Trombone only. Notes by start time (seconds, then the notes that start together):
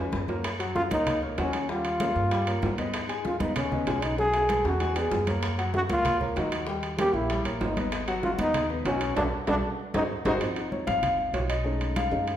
Already playing: C#4
0.75 F4
0.92 D#4
1.39 C#4
1.70 F4
3.26 F4
3.40 D#4
3.56 C#4
4.03 D#4
4.19 G#4
4.66 F#4
4.98 G#4
5.75 F#4
5.91 F4
6.37 D#4
6.98 G4
7.15 E4
7.62 D#4
8.23 F4
8.38 D#4
8.85 C#4
9.16 D4
9.48 D4
9.96 D#4
10.26 D#4